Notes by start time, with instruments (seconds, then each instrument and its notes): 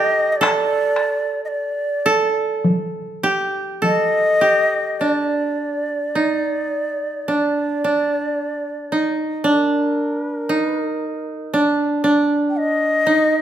Already playing: koto G4 A4, shakuhachi D#5
0.32 shakuhachi D5 D#5
0.41 koto A4, taiko rim
0.96 taiko rim
1.45 shakuhachi D5 D#5
2.06 koto A4
2.64 taiko high
3.23 koto G4
3.82 koto A4, shakuhachi D#5, taiko high
4.41 koto G4
5.00 koto D4, shakuhachi D#5
5.11 shakuhachi D5
6.15 koto D#4
7.28 koto D4, shakuhachi D5
7.84 koto D4
8.92 koto D#4
9.44 koto D4
9.48 shakuhachi A#4
10.20 shakuhachi B4
10.39 shakuhachi A#4
10.49 koto D#4
10.60 shakuhachi B4
10.80 shakuhachi A#4
11.54 koto D4
12.04 koto D4
12.50 shakuhachi G5
12.57 shakuhachi D#5
13.06 koto D#4